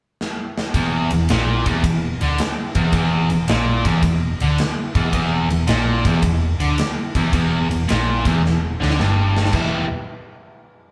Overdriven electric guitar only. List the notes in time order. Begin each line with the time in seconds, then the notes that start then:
0.75 E2
1.13 E2
1.30 A#2
1.66 E2
1.84 E2
2.21 D3
2.40 muted overdriven electric guitar stroke
2.75 E2
2.94 E2
3.31 E2
3.49 A#2
3.86 E2
4.03 E2
4.42 D3
4.59 muted overdriven electric guitar stroke
4.96 E2
5.14 E2
5.51 E2
5.68 A#2
6.06 E2
6.24 E2
6.60 D3
6.78 muted overdriven electric guitar stroke
7.16 E2
7.33 E2
7.71 E2
7.88 A#2
8.26 E2
8.44 E2
8.81 D3
8.98 G2
9.53 E3 G3 B3 E4